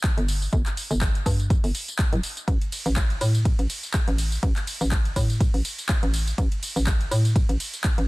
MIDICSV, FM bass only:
0, 0, Header, 1, 2, 480
1, 0, Start_track
1, 0, Tempo, 487805
1, 519, Time_signature, 4, 2, 24, 8
1, 7950, End_track
2, 0, Start_track
2, 0, Title_t, "FM bass"
2, 0, Program_c, 0, 39
2, 172, Note_on_c, 0, 31, 90
2, 472, Note_off_c, 0, 31, 0
2, 518, Note_on_c, 0, 31, 102
2, 616, Note_off_c, 0, 31, 0
2, 892, Note_on_c, 0, 31, 93
2, 1192, Note_off_c, 0, 31, 0
2, 1238, Note_on_c, 0, 43, 83
2, 1553, Note_off_c, 0, 43, 0
2, 1613, Note_on_c, 0, 31, 80
2, 1690, Note_off_c, 0, 31, 0
2, 2092, Note_on_c, 0, 26, 103
2, 2170, Note_off_c, 0, 26, 0
2, 2438, Note_on_c, 0, 33, 99
2, 2535, Note_off_c, 0, 33, 0
2, 2812, Note_on_c, 0, 33, 92
2, 3112, Note_off_c, 0, 33, 0
2, 3159, Note_on_c, 0, 45, 83
2, 3474, Note_off_c, 0, 45, 0
2, 3532, Note_on_c, 0, 33, 79
2, 3610, Note_off_c, 0, 33, 0
2, 4012, Note_on_c, 0, 33, 93
2, 4312, Note_off_c, 0, 33, 0
2, 4358, Note_on_c, 0, 33, 102
2, 4455, Note_off_c, 0, 33, 0
2, 4732, Note_on_c, 0, 33, 91
2, 5032, Note_off_c, 0, 33, 0
2, 5078, Note_on_c, 0, 45, 82
2, 5393, Note_off_c, 0, 45, 0
2, 5452, Note_on_c, 0, 33, 77
2, 5529, Note_off_c, 0, 33, 0
2, 5932, Note_on_c, 0, 33, 90
2, 6232, Note_off_c, 0, 33, 0
2, 6279, Note_on_c, 0, 33, 106
2, 6376, Note_off_c, 0, 33, 0
2, 6653, Note_on_c, 0, 33, 88
2, 6952, Note_off_c, 0, 33, 0
2, 6999, Note_on_c, 0, 45, 81
2, 7314, Note_off_c, 0, 45, 0
2, 7372, Note_on_c, 0, 33, 79
2, 7449, Note_off_c, 0, 33, 0
2, 7852, Note_on_c, 0, 33, 94
2, 7950, Note_off_c, 0, 33, 0
2, 7950, End_track
0, 0, End_of_file